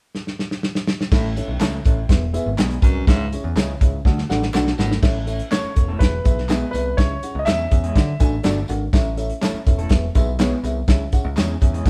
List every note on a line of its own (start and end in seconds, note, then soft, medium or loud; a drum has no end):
0.15 snare soft
0.27 snare soft
0.39 snare medium
0.51 snare medium
0.63 snare medium
0.75 snare medium
0.87 snare loud
1.01 snare medium
1.12 1.40 A1 medium
1.12 1.31 A2 medium
1.12 1.24 C#4 medium
1.12 1.24 E4 medium
1.12 1.25 A4 medium
1.12 1.25 E5 loud
1.12 kick loud
1.12 snare loud
1.12 crash medium
1.12 tambourine medium
1.36 1.49 C#4 medium
1.36 1.49 E4 medium
1.36 1.49 A4 medium
1.36 1.49 E5 medium
1.36 closed hi-hat medium
1.36 tambourine medium
1.48 1.57 B1 medium
1.60 1.79 C#2 medium
1.60 1.75 A3 medium
1.60 1.75 C#4 medium
1.60 1.73 C#4 medium
1.60 1.75 E4 medium
1.60 1.73 E4 medium
1.60 1.75 A4 medium
1.60 1.73 A4 medium
1.60 1.73 E5 medium
1.60 snare loud
1.60 clap medium
1.60 closed hi-hat medium
1.60 tambourine medium
1.85 2.04 A1 medium
1.85 1.98 C#4 medium
1.85 1.98 E4 medium
1.85 1.98 A4 medium
1.85 1.98 E5 medium
1.85 kick medium
1.85 closed hi-hat medium
1.85 tambourine soft
2.09 2.37 E1 medium
2.09 2.22 B3 medium
2.09 2.22 E4 medium
2.09 2.22 G#4 medium
2.09 2.22 E5 medium
2.09 kick medium
2.09 snare loud
2.09 closed hi-hat medium
2.33 2.46 B3 loud
2.33 2.46 E4 medium
2.33 2.46 G#4 loud
2.33 2.46 E5 loud
2.33 closed hi-hat medium
2.33 tambourine medium
2.46 2.55 G#1 medium
2.58 2.77 B1 medium
2.58 2.73 G#3 medium
2.58 2.73 B3 medium
2.58 2.73 E4 medium
2.58 2.73 G#4 medium
2.58 2.82 D5 medium
2.58 2.82 B5 medium
2.58 snare loud
2.58 clap medium
2.58 closed hi-hat medium
2.58 tambourine medium
2.71 closed hi-hat soft
2.82 3.01 C2 medium
2.82 3.02 F#2 medium
2.82 3.30 B4 medium
2.82 3.29 G#5 medium
2.82 kick loud
2.82 closed hi-hat medium
2.82 tambourine medium
3.07 3.35 C#2 loud
3.07 3.27 G#2 medium
3.07 3.20 C#4 medium
3.07 3.20 E4 medium
3.07 3.20 G#4 medium
3.07 3.20 E5 loud
3.07 kick loud
3.07 snare loud
3.07 closed hi-hat medium
3.07 tambourine medium
3.32 3.45 C#4 medium
3.32 3.45 E4 medium
3.32 3.45 G#4 medium
3.32 3.45 C#5 medium
3.32 closed hi-hat medium
3.32 tambourine medium
3.44 3.53 E2 medium
3.56 3.75 C#2 medium
3.56 3.70 G#3 medium
3.56 3.71 C#4 medium
3.56 3.70 C#4 medium
3.56 3.71 E4 medium
3.56 3.70 E4 medium
3.56 3.71 G#4 medium
3.56 3.70 G#4 medium
3.56 3.69 E5 medium
3.56 snare loud
3.56 clap medium
3.56 closed hi-hat medium
3.56 tambourine medium
3.81 3.99 C#2 medium
3.81 3.94 C#4 medium
3.81 3.94 E4 medium
3.81 3.94 G#4 medium
3.81 3.94 E5 medium
3.81 kick medium
3.81 closed hi-hat medium
3.81 tambourine soft
4.05 4.24 D2 medium
4.05 4.18 D4 medium
4.05 4.18 F#4 medium
4.05 4.18 A4 medium
4.05 4.18 F#5 medium
4.05 kick medium
4.05 snare medium
4.18 snare medium
4.29 4.48 A1 medium
4.29 4.42 D4 loud
4.29 4.42 F#4 medium
4.29 4.42 A4 loud
4.29 4.42 F#5 loud
4.29 snare medium
4.29 tambourine medium
4.43 snare medium
4.54 4.72 B1 medium
4.54 4.68 A3 medium
4.54 4.66 D4 loud
4.54 4.68 D4 medium
4.54 4.66 F#4 medium
4.54 4.69 F#4 loud
4.54 4.66 A4 loud
4.54 4.69 A4 medium
4.54 4.66 F#5 loud
4.54 snare medium
4.54 clap medium
4.54 tambourine medium
4.67 snare medium
4.78 4.97 G#1 medium
4.78 4.98 A2 medium
4.78 4.91 D4 medium
4.78 4.91 F#4 medium
4.78 4.91 A4 medium
4.78 4.91 F#5 medium
4.78 snare medium
4.78 tambourine medium
4.91 snare medium
5.02 5.40 A1 medium
5.02 5.15 C#4 loud
5.02 5.15 E4 loud
5.02 5.15 A4 loud
5.02 5.15 E5 loud
5.02 kick loud
5.02 snare loud
5.02 crash medium
5.02 tambourine medium
5.27 5.39 C#4 medium
5.27 5.39 E4 medium
5.27 5.39 A4 medium
5.27 5.40 E5 loud
5.27 closed hi-hat medium
5.27 tambourine soft
5.39 closed hi-hat soft
5.51 5.66 A3 medium
5.51 5.66 C#4 medium
5.51 5.64 C#4 medium
5.51 5.64 E4 medium
5.51 5.66 E4 medium
5.51 5.64 A4 medium
5.51 5.66 A4 medium
5.51 6.02 C#5 medium
5.51 5.64 C#5 medium
5.51 snare medium
5.51 clap medium
5.51 closed hi-hat medium
5.51 tambourine medium
5.64 muted picked electric bass stroke soft
5.75 5.95 E1 medium
5.75 5.88 C#4 medium
5.75 5.88 E4 medium
5.75 5.88 A4 medium
5.75 5.88 C#5 medium
5.75 kick medium
5.75 closed hi-hat medium
5.75 tambourine soft
5.88 6.00 A3 medium
5.88 6.00 C#4 medium
5.88 5.99 E4 medium
5.88 5.99 A4 medium
5.99 6.19 E1 medium
5.99 6.13 B3 medium
5.99 6.13 E4 medium
5.99 6.13 G#4 medium
5.99 6.69 B4 medium
5.99 6.13 E5 medium
5.99 kick medium
5.99 snare loud
5.99 closed hi-hat medium
6.24 6.62 B1 medium
6.24 6.37 B3 medium
6.24 6.37 E4 medium
6.24 6.37 G#4 medium
6.24 6.37 E5 medium
6.24 kick medium
6.24 closed hi-hat medium
6.24 tambourine medium
6.38 snare soft
6.49 6.63 G#3 medium
6.49 6.61 B3 medium
6.49 6.64 B3 medium
6.49 6.62 E4 medium
6.49 6.64 E4 medium
6.49 6.62 G#4 medium
6.49 6.64 G#4 medium
6.49 6.62 E5 medium
6.49 snare loud
6.49 clap medium
6.49 closed hi-hat medium
6.49 tambourine medium
6.71 6.92 C2 medium
6.71 6.86 B3 medium
6.71 6.86 E4 medium
6.71 6.86 G#4 medium
6.71 6.97 B4 medium
6.71 6.86 E5 medium
6.71 closed hi-hat medium
6.71 tambourine medium
6.97 7.17 C#2 loud
6.97 7.11 C#4 medium
6.97 7.11 E4 medium
6.97 7.11 G#4 medium
6.97 7.36 C#5 medium
6.97 7.11 E5 loud
6.97 kick loud
6.97 snare loud
6.97 closed hi-hat medium
6.97 tambourine medium
7.23 7.35 C#4 medium
7.23 7.35 E4 medium
7.23 7.35 G#4 medium
7.23 7.35 F#5 medium
7.23 closed hi-hat medium
7.23 tambourine medium
7.35 7.44 C#2 medium
7.39 7.46 D#5 medium
7.45 7.65 E2 medium
7.45 7.61 G#3 medium
7.45 7.59 C#4 medium
7.45 7.61 C#4 medium
7.45 7.59 E4 medium
7.45 7.61 E4 medium
7.45 7.59 G#4 medium
7.45 7.61 G#4 medium
7.45 8.64 E5 medium
7.45 7.59 E5 medium
7.45 snare loud
7.45 clap medium
7.45 closed hi-hat medium
7.45 tambourine medium
7.71 7.90 E2 medium
7.71 7.83 C#4 medium
7.71 7.83 E4 medium
7.71 7.83 G#4 medium
7.71 7.83 E5 medium
7.71 kick medium
7.71 closed hi-hat medium
7.71 tambourine soft
7.84 7.95 G#3 soft
7.84 7.95 C#4 medium
7.84 7.95 E4 medium
7.84 7.95 G#4 medium
7.84 closed hi-hat soft
7.96 8.14 D3 medium
7.96 8.08 D4 medium
7.96 8.08 F#4 medium
7.96 8.08 A4 medium
7.96 8.08 F#5 medium
7.96 kick medium
7.96 snare loud
7.96 closed hi-hat medium
7.96 tambourine soft
8.20 8.39 A1 medium
8.20 8.32 D4 loud
8.20 8.32 F#4 medium
8.20 8.33 A4 loud
8.20 8.32 G#5 loud
8.20 kick medium
8.20 closed hi-hat medium
8.20 tambourine medium
8.43 8.63 G1 medium
8.43 8.59 A3 medium
8.43 8.56 D4 loud
8.43 8.59 D4 medium
8.43 8.56 F#4 loud
8.43 8.59 F#4 medium
8.43 8.56 A4 medium
8.43 8.59 A4 medium
8.43 8.56 D5 loud
8.43 snare medium
8.43 clap medium
8.43 closed hi-hat medium
8.43 tambourine medium
8.68 8.87 G#1 medium
8.68 8.81 D4 medium
8.68 8.81 F#4 medium
8.68 8.81 A4 medium
8.68 8.81 F#5 medium
8.68 closed hi-hat medium
8.68 tambourine medium
8.93 9.30 A1 loud
8.93 9.06 C#4 loud
8.93 9.06 E4 loud
8.93 9.06 A4 loud
8.93 9.06 E5 loud
8.93 kick loud
8.93 snare loud
8.93 closed hi-hat medium
8.93 tambourine medium
9.17 9.30 C#4 medium
9.17 9.30 E4 medium
9.17 9.30 A4 medium
9.17 9.30 E5 loud
9.17 closed hi-hat medium
9.17 tambourine medium
9.30 closed hi-hat soft
9.41 9.56 A3 medium
9.41 9.54 C#4 medium
9.41 9.56 C#4 medium
9.41 9.54 E4 medium
9.41 9.56 E4 medium
9.41 9.54 A4 medium
9.41 9.57 A4 medium
9.41 9.54 E5 medium
9.41 snare loud
9.41 clap medium
9.41 closed hi-hat medium
9.41 tambourine medium
9.54 muted picked electric bass stroke soft
9.66 9.85 E1 medium
9.66 9.79 C#4 medium
9.66 9.79 E4 medium
9.66 9.79 A4 medium
9.66 9.79 E5 medium
9.66 kick medium
9.66 closed hi-hat medium
9.66 tambourine soft
9.78 9.90 A3 soft
9.78 9.90 C#4 medium
9.78 9.90 E4 medium
9.78 9.90 A4 medium
9.78 closed hi-hat soft
9.89 10.09 E1 loud
9.89 10.03 B3 medium
9.89 10.03 E4 medium
9.89 10.03 G#4 medium
9.89 10.03 E5 medium
9.89 kick medium
9.89 snare loud
9.89 closed hi-hat medium
10.15 10.52 B1 medium
10.15 10.27 B3 medium
10.15 10.27 E4 medium
10.15 10.28 G#4 loud
10.15 10.28 E5 loud
10.15 kick medium
10.15 closed hi-hat medium
10.15 tambourine medium
10.39 10.54 G#3 medium
10.39 10.52 B3 loud
10.39 10.54 B3 medium
10.39 10.52 E4 medium
10.39 10.54 E4 medium
10.39 10.52 G#4 medium
10.39 10.54 G#4 medium
10.39 10.52 C#5 loud
10.39 snare loud
10.39 clap medium
10.39 closed hi-hat medium
10.39 tambourine medium
10.63 10.82 C2 medium
10.63 10.76 B3 medium
10.63 10.76 E4 medium
10.63 10.76 G#4 medium
10.63 10.77 E5 medium
10.63 closed hi-hat medium
10.63 tambourine medium
10.88 11.07 C#2 medium
10.88 11.01 C#4 loud
10.88 11.01 E4 medium
10.88 11.01 G#4 loud
10.88 11.01 E5 loud
10.88 kick loud
10.88 snare loud
10.88 closed hi-hat medium
10.88 tambourine medium
11.12 11.25 C#4 medium
11.12 11.25 E4 medium
11.12 11.25 G#4 medium
11.12 11.25 F#5 loud
11.12 kick medium
11.12 closed hi-hat medium
11.12 tambourine soft
11.25 11.34 C#2 medium
11.36 11.55 E2 medium
11.36 11.51 G#3 medium
11.36 11.50 C#4 medium
11.36 11.51 C#4 medium
11.36 11.50 E4 medium
11.36 11.52 E4 medium
11.36 11.50 G#4 medium
11.36 11.52 G#4 medium
11.36 11.50 C#5 medium
11.36 snare loud
11.36 clap medium
11.36 closed hi-hat medium
11.36 tambourine medium
11.61 11.80 E2 medium
11.61 11.74 C#4 medium
11.61 11.74 E4 medium
11.61 11.74 G#4 medium
11.61 11.74 E5 medium
11.61 kick medium
11.61 closed hi-hat medium
11.61 tambourine soft
11.73 11.85 G#3 soft
11.73 11.85 C#4 medium
11.73 11.85 E4 soft
11.73 11.85 G#4 medium
11.73 closed hi-hat soft
11.86 11.90 D2 medium
11.86 11.90 D4 medium
11.86 11.90 F#4 medium
11.86 11.90 A4 medium
11.86 11.90 F#5 medium
11.86 kick medium
11.86 closed hi-hat medium